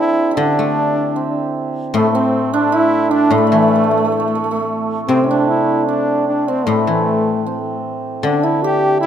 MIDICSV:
0, 0, Header, 1, 4, 480
1, 0, Start_track
1, 0, Tempo, 785340
1, 235, Time_signature, 2, 2, 24, 8
1, 5540, End_track
2, 0, Start_track
2, 0, Title_t, "Trombone"
2, 0, Program_c, 0, 57
2, 0, Note_on_c, 0, 64, 95
2, 230, Note_on_c, 0, 62, 91
2, 239, Note_off_c, 0, 64, 0
2, 952, Note_off_c, 0, 62, 0
2, 1188, Note_on_c, 0, 57, 95
2, 1318, Note_on_c, 0, 60, 91
2, 1327, Note_off_c, 0, 57, 0
2, 1555, Note_on_c, 0, 62, 96
2, 1564, Note_off_c, 0, 60, 0
2, 1673, Note_on_c, 0, 64, 112
2, 1682, Note_off_c, 0, 62, 0
2, 1907, Note_on_c, 0, 62, 102
2, 1916, Note_off_c, 0, 64, 0
2, 2033, Note_on_c, 0, 57, 92
2, 2043, Note_off_c, 0, 62, 0
2, 2879, Note_off_c, 0, 57, 0
2, 3107, Note_on_c, 0, 60, 97
2, 3222, Note_on_c, 0, 62, 83
2, 3231, Note_off_c, 0, 60, 0
2, 3350, Note_on_c, 0, 64, 89
2, 3359, Note_off_c, 0, 62, 0
2, 3583, Note_on_c, 0, 62, 87
2, 3593, Note_off_c, 0, 64, 0
2, 3833, Note_off_c, 0, 62, 0
2, 3837, Note_on_c, 0, 62, 75
2, 3961, Note_on_c, 0, 60, 83
2, 3970, Note_off_c, 0, 62, 0
2, 4078, Note_on_c, 0, 57, 89
2, 4087, Note_off_c, 0, 60, 0
2, 4798, Note_off_c, 0, 57, 0
2, 5036, Note_on_c, 0, 62, 92
2, 5160, Note_on_c, 0, 64, 93
2, 5169, Note_off_c, 0, 62, 0
2, 5275, Note_on_c, 0, 67, 112
2, 5285, Note_off_c, 0, 64, 0
2, 5503, Note_off_c, 0, 67, 0
2, 5506, Note_on_c, 0, 64, 95
2, 5540, Note_off_c, 0, 64, 0
2, 5540, End_track
3, 0, Start_track
3, 0, Title_t, "Hammered dulcimer"
3, 0, Program_c, 1, 15
3, 0, Note_on_c, 1, 60, 68
3, 0, Note_on_c, 1, 62, 69
3, 0, Note_on_c, 1, 64, 67
3, 0, Note_on_c, 1, 67, 73
3, 0, Note_on_c, 1, 69, 86
3, 189, Note_off_c, 1, 64, 0
3, 191, Note_on_c, 1, 64, 63
3, 228, Note_off_c, 1, 62, 0
3, 230, Note_on_c, 1, 62, 67
3, 683, Note_off_c, 1, 69, 0
3, 706, Note_off_c, 1, 60, 0
3, 709, Note_on_c, 1, 60, 53
3, 948, Note_off_c, 1, 67, 0
3, 1190, Note_on_c, 1, 57, 72
3, 1310, Note_off_c, 1, 60, 0
3, 1313, Note_on_c, 1, 60, 82
3, 1547, Note_off_c, 1, 62, 0
3, 1549, Note_on_c, 1, 62, 91
3, 1662, Note_off_c, 1, 64, 0
3, 1664, Note_on_c, 1, 64, 85
3, 1898, Note_off_c, 1, 62, 0
3, 1901, Note_on_c, 1, 62, 80
3, 2022, Note_off_c, 1, 57, 0
3, 2024, Note_on_c, 1, 57, 74
3, 2062, Note_off_c, 1, 57, 0
3, 2065, Note_on_c, 1, 57, 53
3, 2117, Note_off_c, 1, 57, 0
3, 2120, Note_on_c, 1, 57, 58
3, 2165, Note_off_c, 1, 57, 0
3, 2168, Note_on_c, 1, 57, 44
3, 2213, Note_off_c, 1, 57, 0
3, 2215, Note_on_c, 1, 57, 50
3, 2248, Note_off_c, 1, 57, 0
3, 2251, Note_on_c, 1, 57, 43
3, 2293, Note_off_c, 1, 57, 0
3, 2295, Note_on_c, 1, 57, 52
3, 2342, Note_off_c, 1, 57, 0
3, 2345, Note_on_c, 1, 57, 46
3, 2388, Note_off_c, 1, 57, 0
3, 2391, Note_on_c, 1, 57, 53
3, 2427, Note_off_c, 1, 57, 0
3, 2429, Note_on_c, 1, 57, 50
3, 2471, Note_off_c, 1, 57, 0
3, 2473, Note_on_c, 1, 57, 54
3, 2517, Note_off_c, 1, 57, 0
3, 2519, Note_on_c, 1, 57, 50
3, 2563, Note_off_c, 1, 57, 0
3, 2565, Note_on_c, 1, 57, 60
3, 2611, Note_off_c, 1, 57, 0
3, 2614, Note_on_c, 1, 57, 44
3, 2658, Note_off_c, 1, 57, 0
3, 2660, Note_on_c, 1, 57, 54
3, 2710, Note_off_c, 1, 57, 0
3, 2713, Note_on_c, 1, 57, 42
3, 2754, Note_off_c, 1, 57, 0
3, 2757, Note_on_c, 1, 57, 57
3, 3111, Note_off_c, 1, 60, 0
3, 3113, Note_on_c, 1, 60, 66
3, 3199, Note_off_c, 1, 64, 0
3, 3201, Note_on_c, 1, 64, 50
3, 3241, Note_off_c, 1, 62, 0
3, 3244, Note_on_c, 1, 62, 78
3, 3595, Note_off_c, 1, 62, 0
3, 3597, Note_on_c, 1, 62, 56
3, 3959, Note_off_c, 1, 60, 0
3, 3962, Note_on_c, 1, 60, 62
3, 4083, Note_off_c, 1, 57, 0
3, 4086, Note_on_c, 1, 57, 62
3, 4560, Note_off_c, 1, 60, 0
3, 4562, Note_on_c, 1, 60, 52
3, 5038, Note_off_c, 1, 62, 0
3, 5041, Note_on_c, 1, 62, 61
3, 5152, Note_off_c, 1, 64, 0
3, 5154, Note_on_c, 1, 64, 67
3, 5282, Note_on_c, 1, 67, 80
3, 5516, Note_off_c, 1, 64, 0
3, 5519, Note_on_c, 1, 64, 69
3, 5540, Note_off_c, 1, 57, 0
3, 5540, Note_off_c, 1, 60, 0
3, 5540, Note_off_c, 1, 62, 0
3, 5540, Note_off_c, 1, 64, 0
3, 5540, Note_off_c, 1, 67, 0
3, 5540, End_track
4, 0, Start_track
4, 0, Title_t, "Guzheng"
4, 0, Program_c, 2, 107
4, 0, Note_on_c, 2, 52, 61
4, 226, Note_on_c, 2, 50, 70
4, 360, Note_on_c, 2, 57, 47
4, 708, Note_off_c, 2, 52, 0
4, 1184, Note_on_c, 2, 45, 69
4, 1188, Note_off_c, 2, 50, 0
4, 1314, Note_off_c, 2, 57, 0
4, 2013, Note_off_c, 2, 45, 0
4, 2020, Note_on_c, 2, 45, 60
4, 2151, Note_on_c, 2, 52, 56
4, 3108, Note_on_c, 2, 48, 52
4, 3122, Note_off_c, 2, 52, 0
4, 3481, Note_off_c, 2, 45, 0
4, 4075, Note_on_c, 2, 45, 59
4, 4080, Note_off_c, 2, 48, 0
4, 4201, Note_on_c, 2, 52, 45
4, 5031, Note_on_c, 2, 50, 64
4, 5034, Note_off_c, 2, 45, 0
4, 5156, Note_off_c, 2, 52, 0
4, 5540, Note_off_c, 2, 50, 0
4, 5540, End_track
0, 0, End_of_file